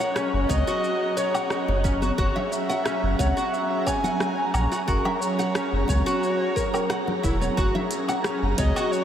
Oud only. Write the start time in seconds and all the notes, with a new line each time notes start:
0.00 F#5
0.16 C#4
0.50 C#5
0.67 F#4
1.17 C#5
1.35 F#5
1.84 C#4
2.02 F#4
2.18 F#4
2.36 E5
2.69 F#5
2.86 C#4
3.19 C#5
3.37 F#4
3.87 C#5
4.04 F#5
4.54 C#4
4.72 F#4
4.88 F#4
5.05 E5
5.39 F#5
5.55 C#4
5.89 C#5
6.06 F#4
6.56 A#4
6.74 A#4
6.90 F#5
7.23 E4
7.41 C#5
7.57 F#4
7.75 E5
8.09 F#5
8.25 C#4
8.58 C#5
8.76 F#4